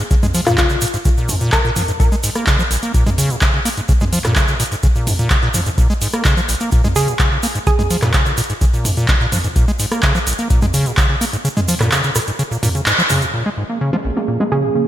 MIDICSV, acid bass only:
0, 0, Header, 1, 2, 480
1, 0, Start_track
1, 0, Key_signature, -5, "minor"
1, 0, Tempo, 472441
1, 111, Time_signature, 4, 2, 24, 8
1, 15115, End_track
2, 0, Start_track
2, 0, Title_t, "Acid bass"
2, 0, Program_c, 0, 38
2, 110, Note_on_c, 0, 49, 101
2, 151, Note_off_c, 0, 49, 0
2, 233, Note_on_c, 0, 56, 106
2, 272, Note_off_c, 0, 56, 0
2, 350, Note_on_c, 0, 53, 102
2, 418, Note_off_c, 0, 53, 0
2, 472, Note_on_c, 0, 46, 101
2, 570, Note_off_c, 0, 46, 0
2, 591, Note_on_c, 0, 49, 77
2, 692, Note_off_c, 0, 49, 0
2, 715, Note_on_c, 0, 49, 75
2, 779, Note_off_c, 0, 49, 0
2, 832, Note_on_c, 0, 46, 99
2, 872, Note_off_c, 0, 46, 0
2, 955, Note_on_c, 0, 44, 76
2, 993, Note_off_c, 0, 44, 0
2, 1072, Note_on_c, 0, 49, 102
2, 1112, Note_off_c, 0, 49, 0
2, 1194, Note_on_c, 0, 46, 78
2, 1312, Note_on_c, 0, 44, 78
2, 1328, Note_off_c, 0, 46, 0
2, 1379, Note_off_c, 0, 44, 0
2, 1434, Note_on_c, 0, 46, 94
2, 1531, Note_off_c, 0, 46, 0
2, 1551, Note_on_c, 0, 49, 77
2, 1618, Note_off_c, 0, 49, 0
2, 1673, Note_on_c, 0, 46, 96
2, 1738, Note_off_c, 0, 46, 0
2, 1790, Note_on_c, 0, 53, 75
2, 1858, Note_off_c, 0, 53, 0
2, 1913, Note_on_c, 0, 44, 75
2, 1952, Note_off_c, 0, 44, 0
2, 2029, Note_on_c, 0, 46, 80
2, 2131, Note_off_c, 0, 46, 0
2, 2153, Note_on_c, 0, 56, 109
2, 2192, Note_off_c, 0, 56, 0
2, 2272, Note_on_c, 0, 44, 76
2, 2339, Note_off_c, 0, 44, 0
2, 2393, Note_on_c, 0, 58, 79
2, 2490, Note_off_c, 0, 58, 0
2, 2511, Note_on_c, 0, 49, 94
2, 2612, Note_off_c, 0, 49, 0
2, 2633, Note_on_c, 0, 53, 99
2, 2672, Note_off_c, 0, 53, 0
2, 2750, Note_on_c, 0, 34, 79
2, 2818, Note_off_c, 0, 34, 0
2, 2873, Note_on_c, 0, 58, 74
2, 2970, Note_off_c, 0, 58, 0
2, 2991, Note_on_c, 0, 46, 80
2, 3092, Note_off_c, 0, 46, 0
2, 3112, Note_on_c, 0, 56, 99
2, 3151, Note_off_c, 0, 56, 0
2, 3230, Note_on_c, 0, 49, 100
2, 3354, Note_on_c, 0, 46, 78
2, 3369, Note_off_c, 0, 49, 0
2, 3418, Note_off_c, 0, 46, 0
2, 3472, Note_on_c, 0, 49, 83
2, 3572, Note_off_c, 0, 49, 0
2, 3594, Note_on_c, 0, 49, 74
2, 3658, Note_off_c, 0, 49, 0
2, 3712, Note_on_c, 0, 58, 93
2, 3752, Note_off_c, 0, 58, 0
2, 3835, Note_on_c, 0, 44, 75
2, 3873, Note_off_c, 0, 44, 0
2, 3952, Note_on_c, 0, 49, 105
2, 3992, Note_off_c, 0, 49, 0
2, 4075, Note_on_c, 0, 56, 109
2, 4113, Note_off_c, 0, 56, 0
2, 4192, Note_on_c, 0, 53, 99
2, 4258, Note_off_c, 0, 53, 0
2, 4314, Note_on_c, 0, 46, 105
2, 4411, Note_off_c, 0, 46, 0
2, 4432, Note_on_c, 0, 49, 76
2, 4532, Note_off_c, 0, 49, 0
2, 4554, Note_on_c, 0, 49, 78
2, 4618, Note_off_c, 0, 49, 0
2, 4672, Note_on_c, 0, 46, 99
2, 4712, Note_off_c, 0, 46, 0
2, 4794, Note_on_c, 0, 44, 76
2, 4832, Note_off_c, 0, 44, 0
2, 4913, Note_on_c, 0, 49, 104
2, 4952, Note_off_c, 0, 49, 0
2, 5035, Note_on_c, 0, 46, 75
2, 5152, Note_on_c, 0, 44, 76
2, 5167, Note_off_c, 0, 46, 0
2, 5219, Note_off_c, 0, 44, 0
2, 5275, Note_on_c, 0, 46, 97
2, 5371, Note_off_c, 0, 46, 0
2, 5392, Note_on_c, 0, 49, 80
2, 5458, Note_off_c, 0, 49, 0
2, 5514, Note_on_c, 0, 46, 99
2, 5578, Note_off_c, 0, 46, 0
2, 5631, Note_on_c, 0, 53, 74
2, 5698, Note_off_c, 0, 53, 0
2, 5753, Note_on_c, 0, 44, 78
2, 5792, Note_off_c, 0, 44, 0
2, 5871, Note_on_c, 0, 46, 79
2, 5972, Note_off_c, 0, 46, 0
2, 5993, Note_on_c, 0, 56, 106
2, 6032, Note_off_c, 0, 56, 0
2, 6110, Note_on_c, 0, 44, 79
2, 6178, Note_off_c, 0, 44, 0
2, 6232, Note_on_c, 0, 58, 77
2, 6330, Note_off_c, 0, 58, 0
2, 6349, Note_on_c, 0, 49, 96
2, 6451, Note_off_c, 0, 49, 0
2, 6472, Note_on_c, 0, 53, 102
2, 6511, Note_off_c, 0, 53, 0
2, 6590, Note_on_c, 0, 34, 77
2, 6658, Note_off_c, 0, 34, 0
2, 6713, Note_on_c, 0, 58, 75
2, 6810, Note_off_c, 0, 58, 0
2, 6830, Note_on_c, 0, 46, 84
2, 6931, Note_off_c, 0, 46, 0
2, 6952, Note_on_c, 0, 56, 98
2, 6991, Note_off_c, 0, 56, 0
2, 7070, Note_on_c, 0, 49, 104
2, 7193, Note_on_c, 0, 46, 77
2, 7208, Note_off_c, 0, 49, 0
2, 7258, Note_off_c, 0, 46, 0
2, 7309, Note_on_c, 0, 49, 83
2, 7411, Note_off_c, 0, 49, 0
2, 7432, Note_on_c, 0, 49, 72
2, 7497, Note_off_c, 0, 49, 0
2, 7550, Note_on_c, 0, 58, 102
2, 7591, Note_off_c, 0, 58, 0
2, 7672, Note_on_c, 0, 44, 76
2, 7711, Note_off_c, 0, 44, 0
2, 7791, Note_on_c, 0, 49, 99
2, 7831, Note_off_c, 0, 49, 0
2, 7913, Note_on_c, 0, 56, 105
2, 7952, Note_off_c, 0, 56, 0
2, 8031, Note_on_c, 0, 53, 104
2, 8098, Note_off_c, 0, 53, 0
2, 8153, Note_on_c, 0, 46, 106
2, 8250, Note_off_c, 0, 46, 0
2, 8271, Note_on_c, 0, 49, 84
2, 8372, Note_off_c, 0, 49, 0
2, 8393, Note_on_c, 0, 49, 74
2, 8458, Note_off_c, 0, 49, 0
2, 8511, Note_on_c, 0, 46, 100
2, 8551, Note_off_c, 0, 46, 0
2, 8633, Note_on_c, 0, 44, 76
2, 8672, Note_off_c, 0, 44, 0
2, 8751, Note_on_c, 0, 49, 103
2, 8791, Note_off_c, 0, 49, 0
2, 8874, Note_on_c, 0, 46, 73
2, 8992, Note_on_c, 0, 44, 76
2, 9007, Note_off_c, 0, 46, 0
2, 9058, Note_off_c, 0, 44, 0
2, 9115, Note_on_c, 0, 46, 99
2, 9211, Note_off_c, 0, 46, 0
2, 9232, Note_on_c, 0, 49, 79
2, 9299, Note_off_c, 0, 49, 0
2, 9354, Note_on_c, 0, 46, 97
2, 9418, Note_off_c, 0, 46, 0
2, 9473, Note_on_c, 0, 53, 73
2, 9539, Note_off_c, 0, 53, 0
2, 9595, Note_on_c, 0, 44, 76
2, 9633, Note_off_c, 0, 44, 0
2, 9712, Note_on_c, 0, 46, 86
2, 9812, Note_off_c, 0, 46, 0
2, 9834, Note_on_c, 0, 56, 112
2, 9873, Note_off_c, 0, 56, 0
2, 9952, Note_on_c, 0, 44, 81
2, 10018, Note_off_c, 0, 44, 0
2, 10074, Note_on_c, 0, 58, 82
2, 10170, Note_off_c, 0, 58, 0
2, 10192, Note_on_c, 0, 49, 98
2, 10292, Note_off_c, 0, 49, 0
2, 10313, Note_on_c, 0, 53, 104
2, 10352, Note_off_c, 0, 53, 0
2, 10432, Note_on_c, 0, 34, 77
2, 10499, Note_off_c, 0, 34, 0
2, 10554, Note_on_c, 0, 58, 74
2, 10651, Note_off_c, 0, 58, 0
2, 10672, Note_on_c, 0, 46, 83
2, 10772, Note_off_c, 0, 46, 0
2, 10793, Note_on_c, 0, 56, 101
2, 10832, Note_off_c, 0, 56, 0
2, 10911, Note_on_c, 0, 49, 104
2, 11033, Note_on_c, 0, 46, 72
2, 11048, Note_off_c, 0, 49, 0
2, 11098, Note_off_c, 0, 46, 0
2, 11150, Note_on_c, 0, 49, 80
2, 11251, Note_off_c, 0, 49, 0
2, 11272, Note_on_c, 0, 49, 78
2, 11337, Note_off_c, 0, 49, 0
2, 11390, Note_on_c, 0, 58, 95
2, 11431, Note_off_c, 0, 58, 0
2, 11513, Note_on_c, 0, 44, 76
2, 11552, Note_off_c, 0, 44, 0
2, 11630, Note_on_c, 0, 49, 103
2, 11670, Note_off_c, 0, 49, 0
2, 11753, Note_on_c, 0, 56, 106
2, 11792, Note_off_c, 0, 56, 0
2, 11870, Note_on_c, 0, 53, 102
2, 11938, Note_off_c, 0, 53, 0
2, 11993, Note_on_c, 0, 46, 107
2, 12090, Note_off_c, 0, 46, 0
2, 12112, Note_on_c, 0, 49, 82
2, 12212, Note_off_c, 0, 49, 0
2, 12234, Note_on_c, 0, 49, 79
2, 12298, Note_off_c, 0, 49, 0
2, 12351, Note_on_c, 0, 46, 102
2, 12391, Note_off_c, 0, 46, 0
2, 12474, Note_on_c, 0, 44, 74
2, 12512, Note_off_c, 0, 44, 0
2, 12590, Note_on_c, 0, 49, 102
2, 12631, Note_off_c, 0, 49, 0
2, 12712, Note_on_c, 0, 46, 77
2, 12777, Note_off_c, 0, 46, 0
2, 12830, Note_on_c, 0, 46, 102
2, 12898, Note_off_c, 0, 46, 0
2, 12953, Note_on_c, 0, 49, 77
2, 13018, Note_off_c, 0, 49, 0
2, 13071, Note_on_c, 0, 44, 84
2, 13138, Note_off_c, 0, 44, 0
2, 13193, Note_on_c, 0, 53, 97
2, 13232, Note_off_c, 0, 53, 0
2, 13310, Note_on_c, 0, 49, 101
2, 13434, Note_on_c, 0, 46, 77
2, 13449, Note_off_c, 0, 49, 0
2, 13472, Note_off_c, 0, 46, 0
2, 13550, Note_on_c, 0, 46, 82
2, 13651, Note_off_c, 0, 46, 0
2, 13674, Note_on_c, 0, 56, 108
2, 13712, Note_off_c, 0, 56, 0
2, 13790, Note_on_c, 0, 44, 76
2, 13858, Note_off_c, 0, 44, 0
2, 13914, Note_on_c, 0, 58, 73
2, 14011, Note_off_c, 0, 58, 0
2, 14032, Note_on_c, 0, 49, 94
2, 14132, Note_off_c, 0, 49, 0
2, 14153, Note_on_c, 0, 53, 98
2, 14192, Note_off_c, 0, 53, 0
2, 14271, Note_on_c, 0, 34, 72
2, 14338, Note_off_c, 0, 34, 0
2, 14393, Note_on_c, 0, 58, 76
2, 14490, Note_off_c, 0, 58, 0
2, 14509, Note_on_c, 0, 46, 79
2, 14611, Note_off_c, 0, 46, 0
2, 14633, Note_on_c, 0, 56, 96
2, 14672, Note_off_c, 0, 56, 0
2, 14750, Note_on_c, 0, 49, 98
2, 14872, Note_on_c, 0, 46, 75
2, 14888, Note_off_c, 0, 49, 0
2, 14937, Note_off_c, 0, 46, 0
2, 14989, Note_on_c, 0, 49, 76
2, 15091, Note_off_c, 0, 49, 0
2, 15115, End_track
0, 0, End_of_file